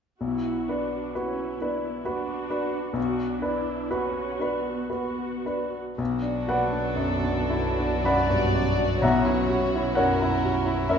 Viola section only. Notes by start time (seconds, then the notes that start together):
0.21 E4 F#4
0.69 D4
1.18 C#4 E4
1.61 B3
2.06 D4 F#4
2.97 D4 F#4
3.44 E4
3.94 C#4 F#4
4.42 B3
4.94 B3 F#4
6.00 F#3 B3
9.02 C#4